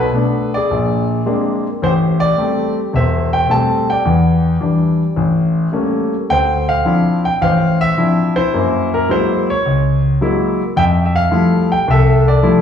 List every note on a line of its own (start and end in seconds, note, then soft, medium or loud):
0.00 0.50 A4 medium
0.00 0.50 B4 medium
0.14 0.54 A3 soft
0.14 0.55 B3 soft
0.14 0.55 D4 medium
0.54 1.63 G#4 medium
0.54 1.06 D5 medium
0.71 1.19 A#1 medium
1.26 1.66 G#3 medium
1.26 1.66 A#3 medium
1.26 1.66 C4 soft
1.26 1.67 D4 medium
1.82 2.31 A1 medium
1.82 2.92 G4 medium
1.82 1.92 C5 medium
2.20 2.72 D5 loud
2.38 2.78 G3 medium
2.38 2.78 A3 soft
2.38 2.78 C4 medium
2.93 3.42 E1 medium
2.93 4.03 C5 medium
2.93 3.30 E5 medium
3.33 3.51 G5 medium
3.49 3.89 G3 medium
3.49 3.90 A3 medium
3.49 3.90 C4 medium
3.49 3.90 A5 medium
3.90 5.15 D5 medium
3.90 6.09 G5 medium
4.05 4.54 E2 medium
4.05 4.54 E3 medium
4.60 5.01 E3 medium
4.60 5.01 G3 soft
4.60 5.02 D4 medium
5.16 5.66 A1 medium
5.72 6.13 G3 medium
5.72 6.13 A3 soft
5.72 6.13 A#3 medium
5.72 6.13 C#4 medium
6.30 6.79 D2 medium
6.30 7.39 C5 medium
6.30 6.65 G5 loud
6.69 7.20 F5 loud
6.85 7.25 F3 soft
6.85 7.26 C4 soft
6.85 7.26 D4 soft
6.85 7.26 E4 medium
7.25 7.41 G5 medium
7.41 7.90 A1 medium
7.41 8.34 C5 medium
7.41 7.81 F5 medium
7.81 8.32 E5 loud
7.97 8.37 F3 medium
7.97 8.37 C4 medium
7.97 8.38 D4 soft
7.97 8.36 E4 medium
8.36 9.08 E4 medium
8.36 8.88 C5 loud
8.54 9.02 F#2 medium
8.54 9.02 A#3 medium
8.94 9.09 A#4 medium
9.09 9.49 F#3 medium
9.09 9.49 G#3 soft
9.09 9.49 A#3 soft
9.09 9.49 E4 medium
9.09 9.46 C5 medium
9.50 10.01 C#5 medium
9.65 10.14 C#2 medium
10.21 10.61 F#3 medium
10.21 10.61 G#3 medium
10.21 10.61 A#3 medium
10.21 10.61 E4 medium
10.76 11.25 F2 medium
10.76 11.04 E5 medium
10.76 10.83 G5 loud
11.06 11.15 E5 medium
11.16 11.73 F5 loud
11.31 11.72 F3 medium
11.31 11.72 G3 soft
11.31 11.72 A3 soft
11.31 11.72 E4 medium
11.72 11.89 G5 medium
11.88 12.36 C2 medium
11.88 12.62 A4 medium
11.88 12.25 E5 medium
12.28 12.62 D5 medium
12.43 12.62 F3 medium
12.43 12.62 G3 medium
12.43 12.62 A3 soft
12.43 12.62 E4 medium